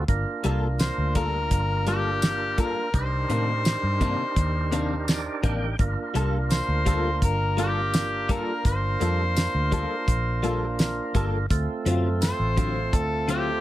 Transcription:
0.08 0.24 G1 medium
0.08 2.90 A#3 medium
0.08 2.90 D4 medium
0.08 2.90 F4 medium
0.08 2.90 A#4 medium
0.08 kick medium
0.08 closed hi-hat medium
0.44 0.90 C2 medium
0.44 0.65 G3 medium
0.44 0.66 A#3 medium
0.44 0.66 F4 medium
0.44 0.66 A4 medium
0.44 closed hi-hat medium
0.79 1.13 C5 medium
0.79 snare medium
0.79 closed hi-hat medium
0.79 tambourine medium
0.98 1.52 D2 medium
1.15 1.37 G3 medium
1.15 1.37 A#3 medium
1.15 1.37 F4 medium
1.15 1.38 A4 medium
1.15 1.83 A#4 loud
1.15 kick medium
1.15 closed hi-hat medium
1.51 2.73 G1 medium
1.51 kick medium
1.51 closed hi-hat medium
1.87 2.08 G3 medium
1.87 2.09 A#3 medium
1.87 2.09 F4 medium
1.87 2.55 G4 loud
1.87 2.09 A4 medium
1.87 closed hi-hat medium
2.22 snare loud
2.22 closed hi-hat medium
2.22 tambourine loud
2.58 2.79 G3 medium
2.58 2.80 A#3 medium
2.58 2.80 F4 medium
2.58 2.80 A4 medium
2.58 2.92 A#4 medium
2.58 kick medium
2.58 closed hi-hat medium
2.94 3.24 C2 medium
2.94 5.75 D4 medium
2.94 5.76 D#4 soft
2.94 5.76 G4 medium
2.94 5.75 A#4 medium
2.94 5.40 C5 loud
2.94 kick loud
2.94 closed hi-hat medium
3.29 3.75 A2 medium
3.29 3.51 C3 medium
3.29 3.51 D#3 medium
3.29 3.51 A#3 medium
3.29 3.52 D4 medium
3.29 closed hi-hat medium
3.65 snare loud
3.65 closed hi-hat medium
3.65 tambourine medium
3.83 4.14 G2 medium
4.01 4.22 C3 medium
4.01 4.23 D#3 medium
4.01 4.23 A#3 medium
4.01 4.23 D4 medium
4.01 kick medium
4.01 closed hi-hat medium
4.36 5.28 D#2 medium
4.36 kick medium
4.36 closed hi-hat medium
4.72 4.94 C3 medium
4.72 4.94 D#3 medium
4.72 4.94 A#3 loud
4.72 4.94 D4 loud
4.72 closed hi-hat medium
5.08 5.41 D5 medium
5.08 snare medium
5.08 closed hi-hat medium
5.08 tambourine loud
5.43 5.74 A1 medium
5.43 5.65 C3 medium
5.43 5.65 D#3 medium
5.43 5.65 A#3 medium
5.43 5.66 D4 loud
5.43 5.77 G5 medium
5.43 kick medium
5.43 closed hi-hat medium
5.79 5.94 G1 medium
5.79 11.46 A#3 medium
5.79 11.46 D4 medium
5.79 11.46 F4 medium
5.79 11.46 A#4 medium
5.79 kick loud
5.79 closed hi-hat medium
6.14 6.60 C2 medium
6.14 6.36 G3 medium
6.14 6.36 A#3 medium
6.14 6.37 F4 medium
6.14 6.37 A4 medium
6.14 closed hi-hat medium
6.51 7.18 C5 loud
6.51 snare medium
6.51 closed hi-hat medium
6.51 tambourine medium
6.68 7.23 D2 medium
6.86 7.07 G3 medium
6.86 7.08 A#3 medium
6.86 7.08 F4 medium
6.86 7.08 A4 medium
6.86 kick medium
6.86 closed hi-hat medium
7.22 8.43 G1 loud
7.22 7.56 A#4 medium
7.22 kick medium
7.22 closed hi-hat medium
7.57 7.79 G3 medium
7.57 7.79 A#3 medium
7.57 7.80 F4 medium
7.57 8.32 G4 loud
7.57 7.80 A4 medium
7.57 closed hi-hat medium
7.94 snare loud
7.94 closed hi-hat medium
7.94 tambourine medium
8.29 8.50 G3 medium
8.29 8.51 A#3 medium
8.29 8.51 F4 medium
8.29 8.51 A4 medium
8.29 8.65 A#4 medium
8.29 kick medium
8.29 closed hi-hat medium
8.65 8.95 G1 medium
8.65 11.11 C5 loud
8.65 kick loud
8.65 closed hi-hat medium
9.00 9.46 F2 medium
9.00 9.22 G3 medium
9.00 9.22 A#3 medium
9.00 9.23 F4 medium
9.00 9.23 A4 medium
9.00 closed hi-hat medium
9.37 snare medium
9.37 closed hi-hat medium
9.37 tambourine loud
9.54 9.85 D2 medium
9.72 9.93 G3 medium
9.72 9.93 A#3 medium
9.72 9.94 F4 medium
9.72 9.94 A4 loud
9.72 kick medium
9.72 closed hi-hat medium
10.08 10.99 A#1 medium
10.08 kick medium
10.08 closed hi-hat medium
10.43 10.64 G3 medium
10.43 10.65 A#3 medium
10.43 10.65 F4 medium
10.43 10.65 A4 medium
10.43 closed hi-hat medium
10.79 snare loud
10.79 closed hi-hat medium
10.79 tambourine medium
11.15 11.45 G1 medium
11.15 11.36 G3 medium
11.15 11.36 A#3 medium
11.15 11.37 F4 medium
11.15 11.37 A4 loud
11.15 kick medium
11.15 closed hi-hat medium
11.50 11.65 D2 medium
11.50 13.61 A3 medium
11.50 13.61 C4 medium
11.50 13.61 F4 medium
11.50 13.61 A4 medium
11.50 kick medium
11.50 closed hi-hat medium
11.86 12.31 F#2 medium
11.86 12.07 D3 medium
11.86 12.08 F#3 medium
11.86 12.08 C4 medium
11.86 12.08 F4 medium
11.86 closed hi-hat medium
12.22 12.96 C5 loud
12.22 snare medium
12.22 closed hi-hat medium
12.22 tambourine loud
12.39 12.93 A1 loud
12.57 12.78 D3 medium
12.57 12.79 F#3 medium
12.57 12.79 C4 medium
12.57 12.79 F4 medium
12.57 kick medium
12.57 closed hi-hat medium
12.93 13.61 D2 medium
12.93 13.29 A4 medium
12.93 kick medium
12.93 closed hi-hat medium
13.28 13.50 D3 medium
13.28 13.50 F#3 medium
13.28 13.50 C4 medium
13.28 13.50 F4 medium
13.28 13.61 G4 loud
13.28 closed hi-hat medium

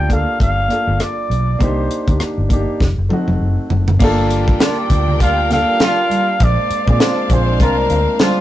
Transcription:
0.00 0.24 D2 medium
0.00 0.08 A#3 loud
0.00 0.09 D4 loud
0.00 0.11 F4 medium
0.00 1.62 G4 medium
0.00 0.12 A4 loud
0.00 0.14 G5 loud
0.08 0.48 A#3 medium
0.08 0.49 D4 medium
0.08 0.49 F4 medium
0.08 0.50 A4 medium
0.08 kick medium
0.08 closed hi-hat medium
0.13 0.41 F5 medium
0.40 0.67 G1 medium
0.40 1.04 F5 loud
0.40 kick medium
0.40 closed hi-hat medium
0.68 1.26 A#3 medium
0.68 1.27 D4 medium
0.68 1.28 F4 medium
0.68 cross-stick soft
0.68 closed hi-hat medium
0.72 1.28 A4 medium
0.87 0.99 G1 medium
1.00 1.64 D5 medium
1.00 cross-stick medium
1.00 closed hi-hat medium
1.30 1.57 B1 medium
1.30 closed hi-hat soft
1.59 1.87 C2 medium
1.59 1.88 A#3 medium
1.59 1.89 D4 medium
1.59 1.89 D#4 medium
1.59 2.22 C5 medium
1.59 kick medium
1.59 closed hi-hat medium
1.63 1.90 G4 medium
1.91 closed hi-hat medium
2.07 2.19 D2 medium
2.07 2.35 A#3 medium
2.07 2.36 D4 medium
2.07 2.36 D#4 soft
2.07 2.37 G4 medium
2.07 kick medium
2.07 closed hi-hat soft
2.20 muted fingered electric bass stroke soft
2.20 cross-stick medium
2.20 closed hi-hat medium
2.38 2.65 G1 medium
2.49 2.80 A#3 medium
2.49 2.81 D4 medium
2.49 2.81 D#4 medium
2.49 2.82 G4 medium
2.49 kick medium
2.49 closed hi-hat medium
2.80 2.96 F1 medium
2.80 kick medium
2.80 snare soft
2.98 3.09 F#1 medium
3.09 3.67 A3 medium
3.09 3.67 C4 medium
3.09 3.68 D#4 medium
3.09 3.69 F#4 medium
3.09 high tom medium
3.28 3.39 F1 medium
3.28 high tom medium
3.41 3.56 F#1 medium
3.70 3.97 F#1 medium
3.70 floor tom medium
3.88 floor tom medium
3.99 4.54 G1 loud
3.99 6.39 G3 medium
3.99 4.77 A#3 loud
3.99 6.38 A#3 medium
3.99 6.36 D4 medium
3.99 4.78 D4 loud
3.99 8.41 D4 medium
3.99 6.38 F4 medium
3.99 4.78 F4 loud
3.99 6.39 G4 medium
3.99 6.36 A#4 medium
3.99 6.36 G5 loud
3.99 kick loud
3.99 crash medium
4.04 4.79 A4 loud
4.30 closed hi-hat medium
4.48 kick medium
4.60 4.75 A#3 medium
4.60 4.75 D4 medium
4.60 4.75 F4 medium
4.60 5.17 D5 medium
4.60 snare loud
4.60 closed hi-hat medium
4.60 high conga medium
4.90 5.64 D2 medium
4.90 kick medium
4.90 closed hi-hat medium
5.08 low conga medium
5.20 5.35 A#3 medium
5.20 5.35 D4 medium
5.20 5.35 F4 medium
5.20 5.49 F5 loud
5.20 kick medium
5.20 closed hi-hat medium
5.20 muted conga medium
5.50 6.27 A#3 medium
5.50 6.28 D4 medium
5.50 6.28 F4 medium
5.50 6.45 F5 loud
5.50 snare soft
5.50 closed hi-hat medium
5.50 muted conga medium
5.50 low conga medium
5.54 6.29 A4 medium
5.80 6.25 A#3 medium
5.80 6.25 D4 medium
5.80 6.25 F4 loud
5.80 snare loud
5.80 closed hi-hat medium
5.80 high conga medium
6.10 closed hi-hat medium
6.10 high conga medium
6.39 6.56 A#1 loud
6.39 8.41 G#3 medium
6.39 8.41 A#3 medium
6.39 8.41 D4 medium
6.39 8.41 C5 medium
6.39 8.41 F5 medium
6.39 kick medium
6.39 closed hi-hat medium
6.39 muted conga soft
6.44 6.89 D5 loud
6.70 muted fingered electric bass stroke soft
6.70 closed hi-hat medium
6.86 6.99 A#2 medium
6.86 7.14 C4 medium
6.86 7.15 D4 medium
6.86 7.16 F4 medium
6.86 7.16 G#4 medium
6.86 kick medium
6.91 7.34 D5 loud
7.00 7.15 C4 medium
7.00 7.15 D4 medium
7.00 7.15 F4 medium
7.00 snare loud
7.00 closed hi-hat medium
7.00 high conga medium
7.28 7.60 A#1 loud
7.28 8.06 C4 medium
7.28 8.07 D4 medium
7.28 8.08 F4 medium
7.28 kick medium
7.28 closed hi-hat medium
7.28 low conga medium
7.33 8.08 G#4 medium
7.33 7.61 C5 loud
7.60 7.87 C2 medium
7.60 7.75 C4 medium
7.60 7.75 D4 medium
7.60 7.75 F4 medium
7.60 8.41 A#4 medium
7.60 kick medium
7.60 closed hi-hat medium
7.60 muted conga medium
7.89 8.05 D2 loud
7.89 closed hi-hat medium
7.89 muted conga medium
8.19 8.41 C4 medium
8.19 8.41 D4 medium
8.19 8.41 F4 loud
8.19 snare loud
8.19 closed hi-hat medium
8.19 high conga medium

